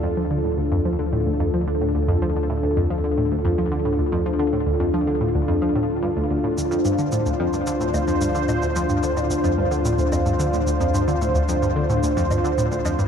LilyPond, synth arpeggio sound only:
\new Staff \with { instrumentName = "Synth arpeggio sound" } { \clef bass \time 4/4 \key d \minor \tempo 4 = 110 f,16 f16 d16 a,16 d,16 f,16 f16 d16 a,16 d,16 f,16 f16 d16 a,16 d,16 f,16 | f16 d16 a,16 d,16 f,16 f16 d16 a,16 d,16 f,16 f16 d16 a,16 d,16 f,16 f16 | d16 a,16 d,16 f,16 f16 d16 a,16 d,16 f,16 f16 a,16 r16 g,16 d,16 d,16 a,16 | d,16 f,16 g,16 d16 a,16 d,16 f,16 g,16 d16 a,16 d,16 f,16 g,16 d16 a,16 d,16 |
f,16 g,16 d16 a,16 d,16 f,16 g,16 d16 a,16 d,16 f,16 g,16 d16 a,16 d,16 f,16 | g,16 d16 a,16 d,16 f,16 g,16 d16 a,16 d,16 f,16 g,16 d16 a,16 d,16 f,16 g,16 | }